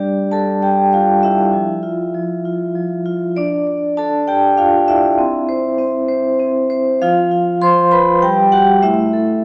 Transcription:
Already playing: G3 D4 D5
0.00 G4
0.32 G3 A4 A5
0.63 G4 G5
0.92 G3 F4 F5
1.23 E4 G4 E5
1.53 F3
1.83 F4
2.14 F3
2.45 F4
2.75 F3
3.06 F4
3.36 D4 D5
3.67 D5
3.97 D4 A4 A5
4.28 G4 D5 G5
4.57 D4 F4 F5
4.88 E4 D5 E5
5.18 C4
5.49 C5
5.78 C4
6.09 C5
6.39 C4
6.70 C5
7.02 F3 F4 F5
7.31 F4
7.62 F3 C5 C6
7.91 F4 B4 B5
8.22 G3 G4 G5
8.52 F#4 G4 F#5
8.82 A3 E4 E5
9.13 A4

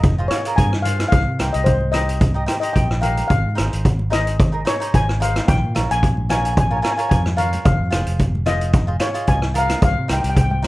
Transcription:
Already playing: F1 D#5
0.03 kick, closed hi-hat
0.18 F4 G#4 C5
0.28 F4 G#4 C#5, cross-stick, closed hi-hat
0.33 D#5
0.45 F4 G#4 A#4, closed hi-hat
0.56 G2 G#5, kick, closed hi-hat
0.73 cross-stick
0.82 F4 G#4 F5, closed hi-hat, low conga
0.87 C5
0.99 cross-stick, closed hi-hat, high conga
1.09 C2 F5, kick, closed hi-hat
1.27 C3
1.39 C2 D#4 G4 C5, cross-stick, closed hi-hat
1.53 C2 D#5, closed hi-hat
1.64 C5, kick, closed hi-hat
1.81 high conga
1.92 D#4 G4 C5 D#5, cross-stick, closed hi-hat, low conga
2.09 closed hi-hat
2.21 kick, closed hi-hat
2.34 D#4 G4 D#5
2.46 D#4 G4 C5, cross-stick, closed hi-hat
2.60 D#4 G4 C5 D#5, closed hi-hat
2.73 A#1 G5, kick, closed hi-hat
2.91 cross-stick
3.01 D#4 G4 A#4 F5, closed hi-hat, low conga
3.17 closed hi-hat, high conga
3.28 G#1 F5, kick, closed hi-hat
3.46 G#2
3.55 G#1 D#4 G#4 C5, cross-stick, closed hi-hat
3.73 G#1, closed hi-hat
3.85 kick, closed hi-hat
3.99 high conga
4.10 D#4 G#4 C5 D#5, cross-stick, closed hi-hat, low conga
4.27 closed hi-hat
4.40 kick, closed hi-hat
4.52 D#4 G#4 A#4
4.65 D#4 G#4 C5 C#5, cross-stick, closed hi-hat
4.80 D#4 G#4 C5, closed hi-hat
4.94 G#1 G#5, kick, closed hi-hat
5.09 cross-stick
5.20 D#4 G#4 C5 F5, closed hi-hat, low conga
5.36 cross-stick, closed hi-hat, high conga
5.48 A#1 G5, kick, closed hi-hat
5.64 A#2
5.75 A#1 F4 A#4 C#5, cross-stick, closed hi-hat, high conga, low conga
5.91 A#1 G#5, closed hi-hat
6.03 kick, closed hi-hat
6.17 high conga
6.29 F4 A#4 C#5 G#5, cross-stick, closed hi-hat, low conga
6.38 G#5
6.45 G#5, closed hi-hat
6.53 G#5, kick
6.57 G#5, closed hi-hat
6.68 F4 A#4 G#5
6.72 C#5
6.77 G#5
6.81 F4 A#4 C#5 G#5, cross-stick, closed hi-hat
6.91 G#5
6.97 F4 A#4 C#5 G#5, closed hi-hat
7.09 F2 G#5, kick, closed hi-hat
7.26 cross-stick, high conga
7.36 F4 A#4 C#5 F5, closed hi-hat, low conga
7.53 closed hi-hat, high conga
7.65 F1 F5, kick, closed hi-hat
7.80 F2
7.91 F1 F4 G#4 C5, cross-stick, closed hi-hat
8.06 F1, closed hi-hat
8.19 kick, closed hi-hat
8.35 high conga
8.46 F4 G#4 C5 D#5, cross-stick, closed hi-hat, low conga
8.61 closed hi-hat
8.73 kick, closed hi-hat
8.87 F4 G#4 C5
9.00 F4 G#4 C5 C#5, cross-stick, closed hi-hat
9.14 F4 G#4 D#5, closed hi-hat
9.27 C2 G#5, kick, closed hi-hat
9.42 cross-stick
9.54 F4 G#4 A#4, closed hi-hat, low conga
9.58 F5
9.68 cross-stick, closed hi-hat, high conga
9.82 C2 F5, kick, closed hi-hat
9.98 C3
10.08 C2 D#4 G4 C5, cross-stick, closed hi-hat
10.13 G5
10.22 C2 G5, closed hi-hat
10.30 G5
10.35 G5, kick, closed hi-hat
10.41 G5
10.50 G5, high conga
10.62 D#4 G4 C5, low conga

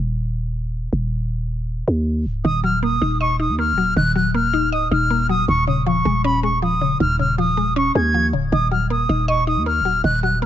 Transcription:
Already playing: D#1
0.93 D#1
1.88 D#2
2.26 C#1
2.45 D#1 D#3 D#6
2.64 F#3 F6
2.83 A#3 D#6
3.02 D#1 D#4
3.20 D#5 C#6
3.40 D#4 D#6
3.49 D#2
3.59 A#3 F6
3.73 D#1
3.78 F#3
3.96 D#1 D#3 F#6
4.15 F#3 F#6
4.34 A#3 F6
4.53 D#4
4.72 C#1 D#5 D#6
4.82 D#1
4.91 D#1 D#4 F6
5.10 A#3
5.29 F#3 D#6
5.48 D#1 D#2 C#6
5.67 C#3 D#6
5.86 F3 C#6
6.05 D#1 G#3
6.24 C#4 B5
6.43 G#3 C#6
6.62 F3 D#6
6.81 C#3
7.00 D#1 D#2 F6
7.19 C#3 F6
7.38 F3 D#6
7.57 G#3
7.76 C#4 C#6
7.95 D#2 G#3 G#6
8.14 F3
8.33 C#1 C#3
8.52 D#1 D#3 D#6
8.71 F#3 F6
8.90 A#3 D#6
9.09 D#1 D#4
9.28 D#5 C#6
9.47 D#4 D#6
9.57 D#2
9.66 A#3 F6
9.80 D#1
9.85 F#3
10.04 D#1 D#3 F#6
10.23 F#3 F#6
10.42 A#3 F6

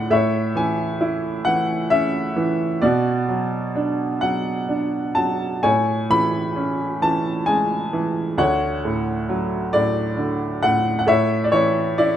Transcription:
Already playing: A2 D3 F#3 D5 F#5
0.10 A2 C#5 E5
0.55 E3 G#5
1.01 E4
1.45 E3 F#5
1.90 C#4 E5
2.36 E3
2.82 B2 F#4 D5
3.29 F#3
3.76 D4
4.21 F#3 F#5
4.69 D4
5.15 F#3 A5
5.63 A2 C#5 G#5
6.10 E3 B5
6.56 C#4
7.02 E3 A5
7.46 G#3 G#5
7.93 E3
8.38 D2 C#5 F#5
8.85 A2
9.29 F#3
9.73 A2 D5
10.17 D3
10.63 A2 F#5
10.99 F#5
11.07 A2 C#5 E5
11.44 D5
11.52 E3 C#5
11.98 E4 D5

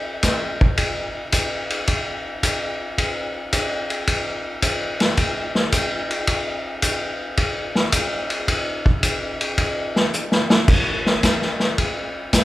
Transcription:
0.23 kick, snare, hi-hat pedal, ride
0.61 kick
0.78 kick, ride
1.32 kick, hi-hat pedal, ride
1.70 ride
1.88 kick, ride
2.43 kick, hi-hat pedal, ride
2.98 kick, ride
3.53 kick, hi-hat pedal, ride
3.90 ride
4.07 kick, ride
4.62 kick, hi-hat pedal, ride
5.00 snare, ride
5.17 kick, ride
5.55 snare
5.72 kick, hi-hat pedal, ride
6.11 ride
6.27 kick, ride
6.82 kick, hi-hat pedal, ride
7.37 kick, ride
7.75 snare
7.92 kick, hi-hat pedal, ride
8.30 ride
8.48 kick, ride
8.86 kick
9.03 kick, hi-hat pedal, ride
9.41 ride
9.58 kick, ride
9.96 snare
10.13 hi-hat pedal
10.32 snare
10.50 snare
10.68 kick, crash
11.06 snare
11.23 kick, snare, hi-hat pedal, ride
11.42 snare
11.60 snare
11.78 kick, ride
12.33 kick, snare, hi-hat pedal, ride

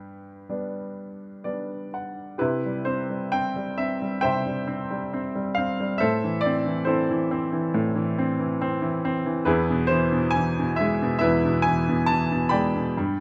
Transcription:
Already playing: G2 B4 G5
0.49 G3 B3 D4
1.44 G3 B3 D4 D5
1.94 F#5
2.38 C3 E4 G4 B4
2.66 G3
2.85 C4 C5
3.09 G3
3.32 C4 G5
3.56 G3
3.78 C4 E5
4.02 G3
4.21 C3 C5 E5 G5
4.46 G3
4.67 C4
4.90 G3
5.13 C4
5.35 G3
5.55 C4 F5
5.80 G3
5.98 A2 A4 C5 E5
6.24 E3
6.41 D5
6.46 C4
6.66 E3
6.85 C4 E4 A4 C5
7.11 E3
7.31 C4
7.52 E3
7.74 A2
7.95 E3
8.19 C4
8.39 E3
8.62 C4
8.82 E3
9.05 C4
9.26 E3
9.45 E2 E4 G#4 B4
9.70 B2
9.87 E3 C5
10.12 B2
10.31 G#5
10.36 E3
10.59 B2
10.76 E5
10.81 G#3
11.02 B2
11.19 E4 B4 E5
11.24 E2
11.45 B2
11.62 G#5
11.67 E3
11.89 B2
12.06 A5
12.11 E3
12.32 B2
12.49 G#3 D5 G5 B5
12.75 B2
12.97 G2

